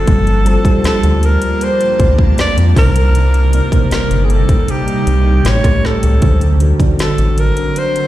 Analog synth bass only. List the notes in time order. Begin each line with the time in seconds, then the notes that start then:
0.08 G1
0.84 D2
1.04 D2
2.00 D2
2.38 F2
2.57 F2
2.77 C2
3.92 G1
4.11 G1
5.07 C2
5.45 A1
5.64 C#2
6.04 C#2
6.22 D2
7.00 A1
7.19 A1